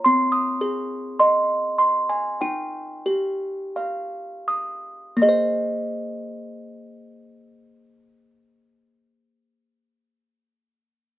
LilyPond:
\new Staff \with { instrumentName = "Music box" } { \time 4/4 \key aes \major \tempo 4 = 40 << { c'''16 ees'''8. c'''8. aes''16 g''4. r8 | <bes aes' c'' ees''>1 | } \\ { c'8 aes'8 ees''8 c'''8 ees'8 g'8 f''8 ees'''8 | r1 | } >> }